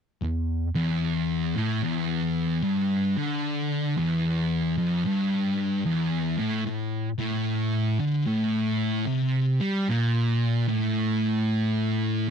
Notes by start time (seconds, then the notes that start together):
0.22 E2
0.75 E2
1.55 A2
1.82 E2
2.64 G2
3.17 D3
3.97 E2
4.78 F2
5.07 G2
5.86 E2
6.38 A2
6.66 A2
7.19 A2
8.00 D3
8.26 A2
9.06 C3
9.61 G3
9.89 A#2
10.68 A2